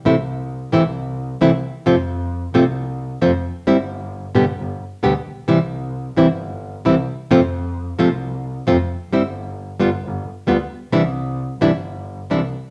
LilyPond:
<<
  \new Staff \with { instrumentName = "Nylon-string guitar" } { \time 4/4 \key c \major \tempo 4 = 132 <c e a c' e'>8 r4 <c e a c' e'>8 r4 <c e a c' e'>8 r8 | <c f a c' f'>8 r4 <c f a c' f'>8 r4 <c f a c' f'>8 r8 | <g c' e'>8 r4 <b, d g b g'>8 r4 <b, d g b g'>8 r8 | <c e g c' e'>8 r4 <c e g c' e'>8 r4 <c e g c' e'>8 r8 |
<c f a c' f'>8 r4 <c f a c' f'>8 r4 <c f a c' f'>8 r8 | <g c' e'>8 r4 <g b f'>8 r4 <g b f'>8 r8 | <c e g d' e'>8 r4 <c e g d' e'>8 r4 <c e g d' e'>8 r8 | }
  \new Staff \with { instrumentName = "Double bass" } { \clef bass \time 4/4 \key c \major c,4. c,4. c,8 r8 | f,4. c,4. f,8 r8 | g,,4. g,,8 g,,8 r8 d,8 bes,,8 | c,4. g,,4. c,8 r8 |
f,4. c,4. f,8 r8 | g,,4. g,,8 g,,8 r8 d,8 r8 | c,4. g,,4. c,8 r8 | }
>>